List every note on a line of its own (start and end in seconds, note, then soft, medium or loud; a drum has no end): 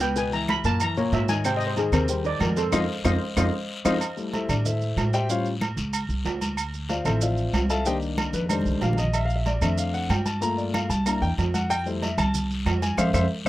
0.00 0.58 C#2 medium
0.00 0.13 B3 medium
0.00 0.14 B4 medium
0.00 0.16 G5 medium
0.00 0.14 B5 medium
0.00 low agogo medium
0.00 short guiro medium
0.00 maracas medium
0.16 0.29 B2 medium
0.16 0.29 B3 loud
0.16 0.29 B4 medium
0.16 0.33 G#5 medium
0.16 high conga soft
0.16 long guiro medium
0.16 maracas medium
0.32 0.58 E3 medium
0.32 0.59 E4 medium
0.32 0.59 E5 medium
0.32 0.48 A#5 loud
0.32 high conga soft
0.32 maracas soft
0.48 0.65 B5 loud
0.48 high conga loud
0.48 low timbale medium
0.48 low agogo loud
0.48 short guiro medium
0.48 claves medium
0.48 maracas soft
0.64 1.09 F#2 medium
0.64 0.78 A#2 medium
0.64 0.78 A#3 medium
0.64 0.78 A#4 loud
0.64 0.80 A5 loud
0.64 short guiro medium
0.64 maracas medium
0.80 0.94 E3 medium
0.80 0.94 E4 medium
0.80 0.94 E5 medium
0.80 0.97 A#5 loud
0.80 high conga soft
0.80 low agogo loud
0.80 long guiro medium
0.80 claves medium
0.80 maracas loud
0.97 1.23 A#2 medium
0.97 1.23 A#3 loud
0.97 1.23 A#4 loud
0.97 1.13 C#5 medium
0.97 high conga soft
0.97 maracas soft
1.12 1.87 G#2 medium
1.12 1.29 E5 medium
1.12 high conga soft
1.12 low timbale medium
1.12 low agogo medium
1.12 short guiro medium
1.12 maracas soft
1.29 1.42 D#3 medium
1.29 1.42 D#4 medium
1.29 1.43 D#5 medium
1.29 1.44 G#5 loud
1.29 high conga medium
1.29 low agogo medium
1.29 short guiro medium
1.29 maracas medium
1.45 1.71 C3 medium
1.45 1.71 C4 medium
1.45 1.71 C5 loud
1.45 1.56 G5 medium
1.45 high conga soft
1.45 low agogo medium
1.45 long guiro medium
1.45 claves medium
1.45 maracas medium
1.57 1.66 D#5 loud
1.57 high conga soft
1.57 maracas soft
1.67 1.77 C5 medium
1.77 1.90 D#3 medium
1.77 1.90 D#4 medium
1.77 1.93 G#4 medium
1.77 1.90 D#5 medium
1.77 high conga medium
1.77 low timbale medium
1.77 low agogo medium
1.77 short guiro medium
1.77 maracas soft
1.92 2.37 D#2 medium
1.92 2.06 C3 medium
1.92 2.06 C4 medium
1.92 2.09 A#4 loud
1.92 2.06 C5 medium
1.92 high conga soft
1.92 low conga medium
1.92 low agogo loud
1.92 short guiro medium
1.92 claves medium
1.92 maracas medium
2.08 2.22 G3 medium
2.08 2.22 G4 medium
2.08 2.25 C5 medium
2.08 2.22 G5 medium
2.08 high conga soft
2.08 low conga medium
2.08 long guiro medium
2.08 maracas loud
2.24 2.51 D#3 medium
2.24 2.51 D#4 medium
2.24 2.41 D5 loud
2.24 2.51 D#5 medium
2.24 high conga soft
2.24 maracas soft
2.40 2.70 F2 loud
2.40 2.57 A#4 medium
2.40 high conga medium
2.40 low timbale medium
2.40 low agogo loud
2.40 short guiro medium
2.40 claves medium
2.40 maracas soft
2.56 2.70 C4 medium
2.56 2.72 A4 medium
2.56 2.70 C5 medium
2.56 2.70 C6 medium
2.56 high conga medium
2.56 low agogo medium
2.56 short guiro medium
2.56 maracas medium
2.72 2.84 F2 loud
2.72 2.83 C4 loud
2.72 2.83 D#4 loud
2.72 2.83 F4 loud
2.72 2.83 C5 medium
2.72 2.83 D#5 medium
2.72 2.83 F5 loud
2.72 high conga medium
2.72 high timbale loud
2.72 long guiro loud
2.72 claves loud
2.72 maracas medium
3.04 3.17 F2 loud
3.04 3.15 C4 loud
3.04 3.15 D#4 loud
3.04 3.15 F4 loud
3.04 3.15 C5 loud
3.04 3.15 D#5 loud
3.04 3.15 F5 loud
3.04 high conga loud
3.04 high timbale loud
3.04 long guiro loud
3.04 claves loud
3.04 maracas medium
3.36 3.49 F2 loud
3.36 3.47 C4 loud
3.36 3.47 D#4 loud
3.36 3.47 F4 loud
3.36 3.48 C5 medium
3.36 3.48 D#5 medium
3.36 3.48 F5 medium
3.36 high conga loud
3.36 high timbale loud
3.36 long guiro loud
3.36 claves loud
3.36 maracas loud
3.85 3.97 F2 medium
3.85 3.95 C4 loud
3.85 3.95 D#4 loud
3.85 3.95 F4 loud
3.85 3.96 C5 loud
3.85 3.96 D#5 medium
3.85 3.96 F5 loud
3.85 high conga loud
3.85 high timbale loud
3.85 long guiro loud
3.85 claves loud
3.85 maracas loud
4.01 low agogo loud
4.01 long guiro medium
4.01 claves medium
4.01 maracas medium
4.17 4.63 G3 medium
4.17 4.63 A3 soft
4.17 4.33 E4 medium
4.17 high conga soft
4.17 maracas soft
4.33 4.49 E4 medium
4.33 4.49 A4 medium
4.33 4.49 C5 medium
4.33 4.49 E5 medium
4.33 high conga medium
4.33 low timbale medium
4.33 low agogo medium
4.33 short guiro medium
4.33 maracas soft
4.49 4.94 A2 medium
4.49 4.65 D4 medium
4.49 4.65 D5 medium
4.49 high conga soft
4.49 low conga loud
4.49 low agogo loud
4.49 short guiro medium
4.49 claves medium
4.49 maracas medium
4.65 5.11 E4 medium
4.65 5.11 A4 medium
4.65 5.11 C5 medium
4.65 5.10 E5 medium
4.65 high conga soft
4.65 low conga medium
4.65 long guiro medium
4.65 maracas medium
4.81 high conga soft
4.81 maracas soft
4.97 5.72 A2 medium
4.97 high conga medium
4.97 low timbale medium
4.97 low agogo loud
4.97 short guiro medium
4.97 claves medium
4.97 maracas soft
5.13 5.29 G4 medium
5.13 5.29 C5 medium
5.13 5.29 E5 medium
5.13 5.29 G5 loud
5.13 low agogo medium
5.13 short guiro medium
5.13 maracas medium
5.29 5.51 G3 medium
5.29 5.51 C#4 medium
5.29 5.51 F4 medium
5.29 5.46 C5 medium
5.29 5.46 C#5 medium
5.29 5.45 F5 medium
5.29 long guiro medium
5.29 maracas medium
5.45 high conga soft
5.45 maracas soft
5.61 high conga loud
5.61 low timbale medium
5.61 low agogo loud
5.61 short guiro medium
5.61 claves medium
5.61 maracas soft
5.77 6.07 C#2 medium
5.77 high conga soft
5.77 short guiro medium
5.77 maracas medium
5.93 high conga soft
5.93 low agogo loud
5.93 long guiro medium
5.93 claves medium
5.93 maracas loud
6.09 6.24 C2 medium
6.09 high conga soft
6.09 maracas soft
6.25 7.00 D2 medium
6.25 high conga soft
6.25 low timbale medium
6.25 low agogo medium
6.25 short guiro medium
6.25 maracas soft
6.41 high conga medium
6.41 low agogo medium
6.41 short guiro medium
6.41 maracas medium
6.57 low agogo loud
6.57 long guiro medium
6.57 claves medium
6.57 maracas medium
6.74 high conga soft
6.74 maracas soft
6.89 7.05 F4 medium
6.89 7.05 C5 medium
6.89 7.06 D5 medium
6.89 7.05 F5 medium
6.89 high conga medium
6.89 low timbale medium
6.89 low agogo medium
6.89 short guiro medium
6.89 maracas soft
7.05 7.50 A1 medium
7.05 7.81 F3 medium
7.05 7.82 C4 medium
7.05 7.22 E4 medium
7.05 7.21 A4 medium
7.05 7.21 C5 medium
7.05 7.69 E5 medium
7.05 high conga soft
7.05 low conga medium
7.05 low agogo loud
7.05 short guiro medium
7.05 claves medium
7.05 maracas medium
7.21 7.67 F4 medium
7.21 7.67 C5 medium
7.21 7.67 D5 medium
7.21 7.67 F5 medium
7.21 high conga soft
7.21 long guiro medium
7.21 maracas loud
7.37 high conga soft
7.37 maracas soft
7.53 8.28 C2 medium
7.53 high conga medium
7.53 low timbale medium
7.53 low agogo loud
7.53 short guiro medium
7.53 claves medium
7.53 maracas soft
7.69 7.86 A4 medium
7.69 7.86 E5 medium
7.69 7.86 F5 medium
7.69 7.86 A5 loud
7.69 low agogo medium
7.69 short guiro medium
7.69 maracas medium
7.86 8.47 D#3 medium
7.86 8.47 A#3 medium
7.86 8.47 D4 medium
7.86 7.96 G4 medium
7.86 7.96 C5 medium
7.86 7.96 D#5 medium
7.86 7.96 G5 loud
7.86 high conga soft
7.86 long guiro medium
7.86 maracas medium
8.02 high conga soft
8.02 maracas soft
8.18 high conga loud
8.18 low timbale medium
8.18 low agogo loud
8.18 short guiro medium
8.18 claves medium
8.18 maracas soft
8.33 8.63 F2 medium
8.33 8.45 B4 medium
8.33 high conga soft
8.33 short guiro medium
8.33 maracas medium
8.46 8.95 D#3 medium
8.46 8.96 G3 medium
8.46 8.48 B4 medium
8.46 high conga loud
8.46 low agogo loud
8.46 claves medium
8.46 maracas loud
8.50 8.96 A3 soft
8.50 8.96 D4 medium
8.50 8.80 C5 medium
8.50 long guiro medium
8.61 8.80 C2 medium
8.61 high conga medium
8.66 maracas soft
8.72 high conga medium
8.81 9.56 A#1 medium
8.81 8.98 F5 medium
8.81 low conga medium
8.81 low timbale medium
8.81 low agogo medium
8.81 short guiro medium
8.81 maracas soft
8.93 low conga loud
8.97 9.14 D#5 medium
8.97 low agogo medium
8.97 short guiro medium
8.97 maracas medium
9.04 low conga loud
9.13 9.25 E5 medium
9.13 high conga soft
9.13 low agogo loud
9.13 long guiro medium
9.13 claves medium
9.13 maracas medium
9.25 9.35 F5 loud
9.30 high conga soft
9.30 maracas soft
9.36 9.46 E5 medium
9.46 9.62 D5 medium
9.46 high conga medium
9.46 low timbale medium
9.46 low agogo medium
9.46 short guiro medium
9.46 maracas soft
9.61 10.06 F2 medium
9.61 10.08 A3 soft
9.61 10.08 C4 medium
9.61 10.08 D4 medium
9.61 9.78 E5 medium
9.61 high conga soft
9.61 low conga medium
9.61 low agogo loud
9.61 short guiro medium
9.61 claves medium
9.61 maracas medium
9.78 9.94 F5 medium
9.78 high conga soft
9.78 long guiro medium
9.78 maracas loud
9.94 10.10 F#5 medium
9.94 high conga soft
9.94 maracas soft
10.09 10.84 G2 medium
10.09 10.26 G5 medium
10.09 high conga medium
10.09 low timbale medium
10.09 low agogo loud
10.09 short guiro medium
10.09 claves medium
10.09 maracas soft
10.26 10.41 A5 medium
10.26 high conga medium
10.26 low agogo medium
10.26 short guiro medium
10.26 maracas medium
10.41 10.87 A3 medium
10.41 10.88 A#3 medium
10.41 10.88 F4 medium
10.41 10.58 A#5 loud
10.41 long guiro medium
10.41 maracas medium
10.58 10.73 D5 medium
10.58 high conga soft
10.58 maracas soft
10.74 10.90 F5 medium
10.74 high conga loud
10.74 low timbale medium
10.74 low agogo medium
10.74 short guiro medium
10.74 claves medium
10.74 maracas soft
10.89 11.20 C2 medium
10.89 11.06 A5 medium
10.89 high conga soft
10.89 short guiro medium
10.89 maracas medium
11.06 11.27 A#3 medium
11.06 11.28 D4 medium
11.06 11.28 E4 medium
11.06 11.22 A#5 loud
11.06 high conga soft
11.06 low agogo loud
11.06 long guiro medium
11.06 claves medium
11.06 maracas medium
11.22 11.37 E2 medium
11.22 11.32 G5 loud
11.22 high conga soft
11.22 maracas soft
11.38 12.12 F2 medium
11.38 high conga soft
11.38 low timbale medium
11.38 low agogo medium
11.38 short guiro medium
11.38 maracas soft
11.54 11.70 F#5 loud
11.54 high conga medium
11.54 low agogo medium
11.54 short guiro medium
11.54 maracas medium
11.70 11.86 G5 loud
11.70 low agogo loud
11.70 long guiro medium
11.70 claves medium
11.70 maracas medium
11.86 12.07 G3 medium
11.86 12.08 A3 medium
11.86 12.08 E4 medium
11.86 12.02 C5 medium
11.86 high conga soft
11.86 maracas soft
12.02 12.18 E5 medium
12.02 high conga medium
12.02 low timbale medium
12.02 low agogo medium
12.02 short guiro medium
12.02 maracas soft
12.18 12.63 C2 medium
12.18 12.48 A5 loud
12.18 high conga soft
12.18 low conga medium
12.18 low agogo loud
12.18 short guiro medium
12.18 claves medium
12.18 maracas medium
12.34 high conga soft
12.34 low conga medium
12.34 long guiro medium
12.34 maracas loud
12.51 high conga soft
12.51 maracas soft
12.65 12.96 F2 medium
12.65 high conga medium
12.65 low timbale medium
12.65 low agogo loud
12.65 short guiro medium
12.65 claves medium
12.65 maracas soft
12.82 12.98 G#5 loud
12.82 high conga medium
12.82 low agogo medium
12.82 short guiro medium
12.82 maracas medium
12.97 13.10 F2 loud
12.97 13.08 C5 loud
12.97 13.08 E5 loud
12.97 13.09 F5 loud
12.97 high conga medium
12.97 high timbale loud
12.97 long guiro medium
12.97 claves loud
12.97 maracas loud
13.13 13.26 F2 loud
13.13 13.24 C5 loud
13.13 13.24 E5 loud
13.13 13.24 F5 medium
13.13 high conga loud
13.13 high timbale medium
13.13 long guiro loud
13.13 claves loud
13.13 maracas loud
13.45 13.49 F2 medium
13.45 13.49 F5 medium